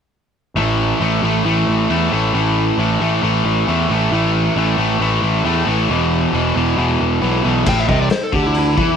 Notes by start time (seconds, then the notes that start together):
0.55 A1 A2 E3 A3
1.01 A1 A2 E3 A3
1.23 A1 A2 E3 A3
1.45 A1 A2 E3 A3
1.68 A1
1.90 E2 A2 E3 A3
2.12 A1 A2 E3 A3
2.34 A1 A2 E3 A3
2.78 A1 A2 E3 A3
3.00 A1 A2 E3 A3
3.23 A1 A2 E3 A3
3.45 A1
3.68 E2 A2 E3 A3
3.90 A1 A2 E3 A3
4.11 A1 A2 E3 A3
4.56 A1 A2 E3 A3
4.78 A1 A2 E3 A3
4.99 A1 A2 E3 A3
5.23 A1
5.44 E2 A2 E3 A3
5.67 A1 A2 E3 A3
5.89 E1 E2 B2 E3
6.33 E1 E2 B2 E3
6.55 E1 E2 B2 E3
6.77 E1 E2 B2 E3
7.01 E1
7.21 B1 E2 B2 E3
7.44 B1 E2 B2 E3
7.66 A1 A2 G5, kick, crash
7.80 E5
7.89 C2 C3 D#5, kick
8.02 D5
8.10 C5, muted overdriven electric guitar stroke, muted picked electric bass stroke, snare, open hi-hat
8.23 A4
8.33 D2 D3 G4, kick
8.46 E4
8.54 E4, open hi-hat
8.77 E2 E3, kick